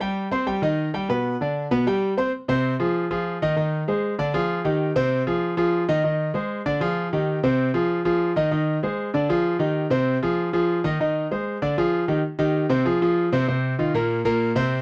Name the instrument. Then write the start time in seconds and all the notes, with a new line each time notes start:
grand piano
0.00 G3 G4 G5
0.31 C4 C5 C6
0.47 G3 G4 G5
0.62 D#3 D#4 D#5
0.94 G3 G4 G5
1.09 B2 B3 B4
1.41 D3 D4 D5
1.71 B2 B3 B4
1.87 G3 G4 G5
2.17 C4 C5 C6
2.48 C3 C4 C5
2.80 F3 F4 G#4
3.11 F3 F4 G#4
3.42 D#3 D#4 D#5
3.56 D#3 D#4 D#5
3.88 G#3 G#4 C5
4.19 D3 D4 D5
4.34 F3 F4 G#4
4.65 D#3 D#4 G4
4.96 C3 C4 C5
5.27 F3 F4 G#4
5.57 F3 F4 G#4
5.89 D#3 D#4 D#5
6.04 D#3 D#4 D#5
6.34 G#3 G#4 C5
6.66 D3 D4 D5
6.80 F3 F4 G#4
7.13 D#3 D#4 G4
7.43 C3 C4 C5
7.74 F3 F4 G#4
8.05 F3 F4 G#4
8.36 D#3 D#4 D#5
8.51 D#3 D#4 D#5
8.83 G#3 G#4 C5
9.14 D3 D4 D5
9.29 F3 F4 G#4
9.59 D#3 D#4 G4
9.90 C3 C4 C5
10.23 F3 F4 G#4
10.53 F3 F4 G#4
10.84 D#3 D#4 D#5
11.00 D#3 D#4 D#5
11.31 G#3 G#4 C5
11.62 D3 D4 D5
11.78 F3 F4 G#4
12.08 D#3 D#4 G4
12.39 D#3 D#4 G4
12.69 C3 C4 C5
12.85 F3 F4 G#4
13.02 F3 F4 G#4
13.32 C3 C4 C5
13.48 C3 C4 C5
13.79 D#3 D#4 F4
13.94 A#2 A#3 A#4
14.25 A#2 A#3 A#4
14.55 C3 C4 C5